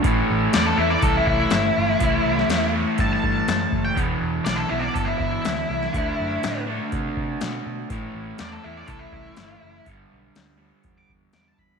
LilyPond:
<<
  \new Staff \with { instrumentName = "Lead electric guitar" } { \time 4/4 \key a \minor \tempo 4 = 122 r4 d''16 a'16 e'16 d''16 a'16 e'16 e'4.~ | e'4. r8 a''16 a''4. g''16 | r4 d''16 a'16 e'16 d''16 a'16 e'16 e'4.~ | e'4. r2 r8 |
r4 d''16 a'16 e'16 d''16 a'16 e'16 e'4. | r2 r16 d'''16 r8 d'''16 a''16 b''8 | }
  \new Staff \with { instrumentName = "Overdriven electric guitar" } { \clef bass \time 4/4 \key a \minor <a, e a>4. <a, e a>2~ <a, e a>8 | <a, e a>4. <a, e a>2~ <a, e a>8 | <e, b, e>4. <e, b, e>2~ <e, b, e>8 | <d a d'>4. <d a d'>2~ <d a d'>8 |
<a, e a>4. <a, e a>2~ <a, e a>8 | <g, d g>4. <g, d g>2~ <g, d g>8 | }
  \new Staff \with { instrumentName = "Picked electric bass" } { \clef bass \time 4/4 \key a \minor a,,8 a,,8 e,8 e,8 c,8 c,8 g,,8 g,,8 | c,8 c,8 e,4 g,8 g,8 fis,8 fis,,8 | e,,8 e,,8 b,,8 b,,8 g,,8 g,,8 d,8 c,8 | d,8 fis,8 a,4 c8 c8 b,8 b,8 |
a,,8 a,,8 e,8 e,8 c,8 c,8 g,,8 fis,,8 | g,,8 b,,8 d,4 e,8 e,8 e,8 e,8 | }
  \new DrumStaff \with { instrumentName = "Drums" } \drummode { \time 4/4 <hho bd>4 <hho sn>4 <hho bd>8 bd8 <hho sn>4 | <hho bd>8. sn16 <hho sn>4 <hho bd>8 bd8 <hho sn>8 bd8 | <hho bd>4 <hho sn>4 <hho bd>8 bd8 <hho sn>8. sn16 | <hho bd>4 <hho sn>4 <hho bd>8 bd8 <hho sn>4 |
<hho bd>4 <hho sn>4 <hho bd>8 bd8 <hho sn>4 | <hho bd>4 <hho sn>4 <hho bd>8 bd8 <hho sn>8 bd8 | }
>>